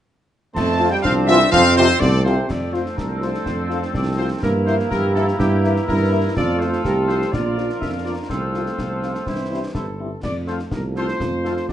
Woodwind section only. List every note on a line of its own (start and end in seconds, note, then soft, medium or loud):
0.55 1.00 C4 medium
0.55 1.00 C5 medium
1.04 1.49 C4 medium
1.04 1.49 C5 medium
1.52 2.21 C4 loud
1.52 2.21 C5 loud
2.49 4.38 C4 medium
2.49 4.39 A4 medium
4.43 6.32 E4 medium
4.43 6.32 A#4 medium
6.36 7.29 F4 medium
6.36 7.29 A4 medium
7.33 8.26 F4 medium
7.33 8.29 A#4 medium
8.30 9.22 F4 soft
8.30 9.23 A4 soft
9.26 9.61 E4 soft
9.26 9.60 C5 soft
9.74 9.85 E4 soft
9.74 9.86 C5 soft
10.48 10.56 F4 soft
10.48 10.56 A4 soft
10.96 11.05 F4 soft
10.96 11.05 A4 soft
11.45 11.53 F4 soft
11.45 11.54 A4 soft